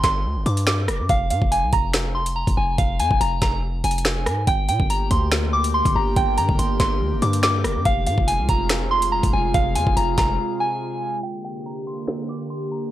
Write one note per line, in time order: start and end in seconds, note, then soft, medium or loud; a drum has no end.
0.00 0.26 G1 loud
0.00 0.23 C6 loud
0.00 kick medium
0.00 snare medium
0.00 closed hi-hat medium
0.00 downlifter medium
0.25 0.38 D2 loud
0.36 0.45 G1 loud
0.46 0.90 G2 loud
0.46 0.65 D6 medium
0.46 closed hi-hat soft
0.57 closed hi-hat medium
0.67 1.07 D6 medium
0.67 finger snap medium
0.67 snare loud
0.88 1.01 F1 loud
0.88 cross-stick loud
0.88 closed hi-hat medium
0.99 1.09 G2 loud
1.09 1.32 F1 loud
1.09 1.29 F5 medium
1.09 kick loud
1.09 closed hi-hat medium
1.30 1.41 G#2 loud
1.30 1.50 F5 medium
1.30 closed hi-hat medium
1.42 1.64 F1 loud
1.42 kick medium
1.52 1.71 G#5 medium
1.52 closed hi-hat medium
1.63 1.72 C2 loud
1.73 2.44 F1 loud
1.73 1.92 A#5 medium
1.73 kick loud
1.73 closed hi-hat medium
1.94 finger snap medium
1.94 snare loud
1.94 closed hi-hat medium
2.15 2.34 C6 medium
2.26 closed hi-hat medium
2.36 2.55 A#5 medium
2.47 2.57 F1 loud
2.47 kick loud
2.47 closed hi-hat medium
2.57 2.78 F1 loud
2.57 2.77 G#5 medium
2.78 3.01 F1 loud
2.78 2.98 F5 medium
2.78 kick loud
2.78 closed hi-hat medium
2.99 3.10 F2 loud
2.99 3.19 G#5 medium
2.99 closed hi-hat medium
3.11 3.20 F1 loud
3.11 kick medium
3.21 3.41 F1 loud
3.21 3.40 A#5 medium
3.21 closed hi-hat medium
3.42 3.82 F1 loud
3.42 3.61 A#5 medium
3.42 kick medium
3.42 snare medium
3.42 closed hi-hat medium
3.84 4.28 F1 loud
3.84 4.44 G#5 medium
3.84 closed hi-hat medium
3.91 closed hi-hat medium
3.98 closed hi-hat medium
4.05 finger snap medium
4.05 snare loud
4.26 4.46 G#2 loud
4.26 cross-stick loud
4.26 closed hi-hat medium
4.47 4.70 G1 loud
4.47 7.82 D3 medium
4.47 7.82 A#3 medium
4.47 7.82 G4 medium
4.47 4.67 G5 medium
4.47 kick loud
4.47 closed hi-hat medium
4.69 4.79 A#2 loud
4.69 4.88 G5 medium
4.69 closed hi-hat medium
4.80 5.10 G1 loud
4.80 kick medium
4.90 5.09 A#5 medium
4.90 closed hi-hat medium
5.11 5.82 D2 loud
5.11 5.30 C6 medium
5.11 kick medium
5.11 closed hi-hat medium
5.32 finger snap medium
5.32 snare loud
5.32 closed hi-hat medium
5.53 5.72 D6 medium
5.64 closed hi-hat medium
5.74 5.93 C6 medium
5.85 5.95 G1 loud
5.85 kick loud
5.85 closed hi-hat medium
5.95 6.16 G1 loud
5.95 6.15 A#5 medium
6.16 6.39 G1 loud
6.16 6.36 G5 loud
6.16 kick loud
6.16 closed hi-hat medium
6.38 6.48 G2 loud
6.38 6.57 A#5 medium
6.38 closed hi-hat medium
6.49 6.58 G1 loud
6.49 kick loud
6.59 6.79 G1 loud
6.59 6.78 C6 medium
6.59 closed hi-hat medium
6.80 7.02 G1 loud
6.80 6.99 C6 loud
6.80 kick loud
6.80 snare medium
6.80 closed hi-hat medium
7.01 7.14 D2 loud
7.12 7.22 G1 loud
7.22 7.66 G2 loud
7.22 7.41 D6 medium
7.22 closed hi-hat medium
7.33 closed hi-hat medium
7.43 7.83 D6 medium
7.43 finger snap medium
7.43 snare loud
7.64 7.77 F1 loud
7.64 cross-stick loud
7.64 closed hi-hat medium
7.76 7.85 G2 loud
7.85 8.08 F1 loud
7.85 11.20 C3 medium
7.85 11.20 G#3 medium
7.85 11.20 F4 loud
7.85 8.05 F5 medium
7.85 kick loud
7.85 closed hi-hat medium
8.07 8.17 G#2 loud
8.07 8.26 F5 medium
8.07 closed hi-hat medium
8.18 8.40 F1 loud
8.18 kick medium
8.28 8.47 G#5 medium
8.28 closed hi-hat medium
8.39 8.48 C2 loud
8.49 9.20 F1 loud
8.49 8.68 A#5 medium
8.49 kick loud
8.49 closed hi-hat medium
8.69 finger snap medium
8.69 snare loud
8.69 closed hi-hat medium
8.91 9.10 C6 medium
9.02 closed hi-hat medium
9.12 9.31 A#5 medium
9.23 9.33 F1 loud
9.23 kick loud
9.23 closed hi-hat medium
9.33 9.54 F1 loud
9.33 9.53 G#5 medium
9.54 9.77 F1 loud
9.54 9.74 F5 medium
9.54 kick loud
9.54 closed hi-hat medium
9.76 9.86 F2 loud
9.76 9.95 G#5 medium
9.76 closed hi-hat medium
9.87 9.96 F1 loud
9.87 kick medium
9.97 10.17 F1 loud
9.97 10.16 A#5 medium
9.97 closed hi-hat medium
10.18 10.38 F1 loud
10.18 10.37 A#5 medium
10.18 kick medium
10.18 snare medium
10.18 closed hi-hat medium
10.60 11.20 G#5 medium
11.23 12.91 D3 medium
11.23 12.91 A#3 medium
11.23 12.91 G4 medium
11.23 11.43 G5 medium
11.23 closed hi-hat medium
11.44 11.64 G5 medium
11.44 closed hi-hat medium
11.66 11.85 A#5 medium
11.66 closed hi-hat medium
11.87 12.06 C6 medium
11.87 closed hi-hat medium
12.08 finger snap medium
12.08 snare loud
12.29 12.48 D6 medium
12.40 closed hi-hat medium
12.50 12.70 C6 medium
12.62 closed hi-hat medium
12.72 12.91 A#5 medium